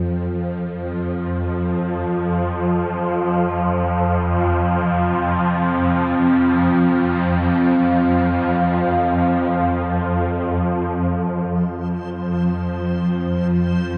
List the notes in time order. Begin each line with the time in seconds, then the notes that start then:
Already playing: F2 F3
3.05 C4
4.79 F4
6.54 F5
11.03 C5
11.08 F2 F3